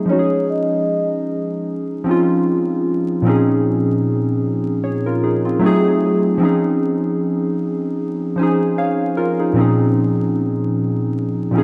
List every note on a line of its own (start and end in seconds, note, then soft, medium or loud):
0.00 0.10 G#4 medium
0.05 1.10 F3 medium
0.05 1.11 G#3 medium
0.05 1.12 C#4 medium
0.10 1.13 D#4 medium
0.10 0.18 F#4 medium
0.10 0.45 C#5 medium
0.19 1.17 G#4 medium
0.50 1.07 D#5 medium
2.04 2.81 F3 medium
2.04 2.82 C4 medium
2.04 2.83 C#4 medium
2.09 2.84 D#4 medium
2.09 2.85 F4 medium
3.22 4.27 A#2 medium
3.22 4.27 F3 medium
3.22 4.28 C4 medium
3.26 4.29 C#4 medium
3.26 4.29 D#4 medium
3.26 4.30 G#4 medium
4.84 5.04 G#4 soft
4.84 5.04 C#5 medium
5.06 5.22 F4 medium
5.06 5.22 A#4 medium
5.24 5.44 D#4 medium
5.24 5.44 G#4 medium
5.45 5.62 C4 medium
5.45 5.82 F4 medium
5.59 6.25 F#3 medium
5.59 6.26 A3 medium
5.59 6.27 C4 medium
5.64 6.28 D#4 medium
5.64 6.29 G#4 loud
6.38 7.42 F3 medium
6.38 7.43 C4 medium
6.38 7.44 C#4 medium
6.43 7.45 D#4 medium
6.43 7.46 G#4 medium
8.36 9.13 F3 medium
8.36 9.15 C#4 medium
8.36 9.14 C5 medium
8.36 8.75 G#5 medium
8.41 8.79 D#4 medium
8.41 8.78 G#4 medium
8.78 9.15 G#4 medium
8.78 9.15 C#5 medium
8.78 9.52 F5 medium
9.17 9.38 F4 medium
9.17 9.38 A#4 medium
9.39 9.58 D#4 medium
9.39 9.59 G#4 medium
9.53 10.58 A#2 medium
9.53 10.59 F3 medium
9.53 10.59 C4 medium
9.57 10.60 C#4 medium
9.57 10.61 D#4 medium
9.57 10.62 G#4 medium
11.51 11.63 A#2 medium
11.51 11.63 F3 medium
11.51 11.63 C4 medium
11.55 11.63 C#4 medium
11.55 11.63 D#4 medium
11.55 11.63 G#4 medium